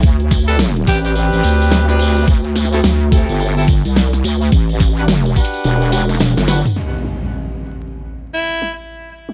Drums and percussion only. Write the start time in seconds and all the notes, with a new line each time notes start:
0.03 kick, open hi-hat, tambourine
0.20 open hi-hat
0.31 kick, snare, open hi-hat, tambourine
0.48 open hi-hat, tambourine
0.59 snare, open hi-hat, tambourine
0.76 open hi-hat
0.87 kick, open hi-hat, tambourine
1.05 open hi-hat, tambourine
1.15 open hi-hat, tambourine
1.33 open hi-hat, tambourine
1.43 open hi-hat, tambourine
1.60 open hi-hat, tambourine
1.62 open hi-hat
1.68 snare, open hi-hat, tambourine
1.72 open hi-hat
1.89 snare, open hi-hat
1.99 open hi-hat, tambourine
2.17 open hi-hat, tambourine
2.27 kick, open hi-hat, tambourine
2.44 open hi-hat
2.56 snare, open hi-hat, tambourine
2.65 snare
2.73 snare, open hi-hat, tambourine
2.84 snare, open hi-hat, tambourine
3.01 open hi-hat
3.12 kick, open hi-hat, tambourine
3.29 open hi-hat, tambourine
3.40 open hi-hat, tambourine
3.57 open hi-hat, tambourine
3.68 kick, open hi-hat, tambourine
3.85 open hi-hat, tambourine
3.96 snare, open hi-hat, tambourine
4.13 snare, open hi-hat
4.24 open hi-hat, tambourine
4.41 open hi-hat, tambourine
4.43 open hi-hat
4.47 open hi-hat
4.48 open hi-hat
4.50 open hi-hat, tambourine
4.52 kick, open hi-hat
4.69 open hi-hat, tambourine
4.80 kick, snare, open hi-hat, tambourine
4.97 open hi-hat, tambourine
5.08 snare, open hi-hat, tambourine
5.26 open hi-hat, tambourine
5.36 kick, tambourine
5.45 open hi-hat
5.54 open hi-hat, tambourine
5.64 open hi-hat, tambourine
5.81 open hi-hat, tambourine
5.92 snare, open hi-hat, tambourine
6.01 snare
6.09 snare, open hi-hat, tambourine
6.15 snare
6.20 snare, open hi-hat, high tom, tambourine
6.37 snare, open hi-hat, tambourine
6.48 snare, open hi-hat, tambourine
6.65 mid tom, open hi-hat, tambourine
7.04 snare
7.32 open hi-hat
7.60 open hi-hat
7.85 open hi-hat
7.88 open hi-hat
7.94 open hi-hat
8.06 open hi-hat
8.16 open hi-hat
8.41 open hi-hat
8.45 open hi-hat
8.62 snare
8.73 open hi-hat
8.90 open hi-hat
9.01 open hi-hat
9.18 open hi-hat
9.29 snare, open hi-hat